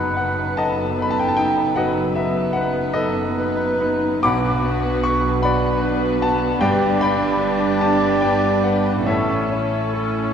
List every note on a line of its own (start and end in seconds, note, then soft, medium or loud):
0.00 0.42 F#1 medium
0.00 0.43 F#2 medium
0.00 1.73 F#2 medium
0.00 0.41 B3 soft
0.00 0.95 B3 soft
0.00 4.08 B3 soft
0.00 0.94 D#4 soft
0.00 4.08 D#4 soft
0.00 0.94 B4 soft
0.00 0.58 D#5 medium
0.00 0.17 F#5 soft
0.00 0.59 F#5 medium
0.00 0.57 A5 medium
0.00 0.14 B5 medium
0.17 0.82 B4 soft
0.17 0.54 F#5 medium
0.57 1.62 F#1 medium
0.57 1.63 F#2 medium
0.57 2.69 A4 medium
0.57 1.34 D#5 medium
0.57 1.34 F#5 medium
0.57 0.99 A5 medium
0.95 2.13 B3 soft
0.95 2.13 D#4 medium
0.95 2.13 B4 soft
0.95 1.61 B4 soft
1.02 1.11 B5 medium
1.11 1.20 A5 medium
1.19 1.28 G5 medium
1.28 1.37 A5 medium
1.37 2.01 D#4 soft
1.37 1.73 G5 medium
1.76 2.81 F#1 medium
1.76 2.82 F#2 medium
1.76 2.40 F#3 medium
1.76 2.13 B4 medium
1.76 2.14 D#5 medium
1.76 2.13 F#5 medium
2.14 3.35 B3 soft
2.14 2.80 B3 soft
2.14 3.34 D#4 soft
2.14 3.34 B4 soft
2.14 2.53 E5 medium
2.53 2.93 B4 medium
2.53 2.92 F#5 medium
2.94 4.08 F#1 medium
2.94 4.08 F#2 medium
2.94 4.18 A4 medium
2.94 3.36 B4 medium
2.94 4.19 B4 medium
2.94 4.18 D#5 medium
3.36 4.21 B3 medium
3.36 4.21 D#4 soft
3.36 4.21 B4 soft
3.36 4.06 B4 soft
3.80 4.23 D#4 medium
4.21 6.56 B1 medium
4.21 6.57 B1 medium
4.21 6.57 B2 medium
4.21 5.39 B3 medium
4.21 9.02 B3 medium
4.21 9.06 D4 medium
4.21 5.39 F#4 medium
4.21 6.62 B4 medium
4.21 5.40 B4 medium
4.21 5.01 F#5 medium
4.21 5.01 B5 medium
4.21 5.00 D6 medium
4.63 5.27 B3 medium
5.03 5.67 B4 soft
5.03 5.40 C#6 medium
5.42 6.58 B3 medium
5.42 6.58 F#4 medium
5.42 6.59 B4 medium
5.42 6.18 D5 medium
5.42 6.05 F#5 medium
5.42 6.17 B5 medium
5.82 6.45 B4 medium
6.20 6.60 F#4 medium
6.20 6.59 A5 medium
6.60 9.05 G1 medium
6.60 9.05 G2 medium
6.60 9.01 G2 medium
6.60 9.05 D4 medium
6.60 9.05 G4 medium
6.60 9.01 B4 medium
6.60 6.99 B4 medium
6.60 9.05 D5 medium
6.60 6.99 D5 medium
6.60 6.98 G5 medium
7.00 7.65 D4 soft
7.00 7.78 D5 medium
7.00 7.78 G5 medium
7.00 7.77 B5 medium
7.40 8.05 B4 medium
7.81 8.20 G5 soft
7.81 8.18 A5 medium
8.21 8.89 D5 soft
8.21 8.60 G5 medium
8.64 9.06 B4 soft
8.64 9.03 F#5 medium
9.04 10.34 A1 medium
9.04 10.32 A2 medium
9.04 10.34 A2 medium
9.04 10.34 A3 medium
9.04 10.34 C#4 medium
9.04 10.34 E4 medium
9.04 10.34 A4 soft
9.04 9.92 A4 soft
9.04 10.34 C#5 medium
9.04 10.34 E5 medium
9.08 10.34 C#5 soft
9.51 10.20 C#4 soft
9.94 10.34 A4 soft